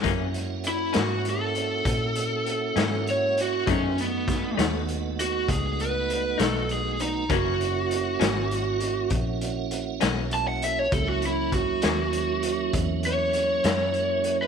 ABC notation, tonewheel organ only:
X:1
M:12/8
L:1/8
Q:3/8=66
K:F#mix
V:1 name="Tonewheel organ"
[A,CEF]12 | [A,E=G^B] [=A,=B,DF]8- [A,B,DF]3 | [A,CEF]12 | [F,A,CE]12 |]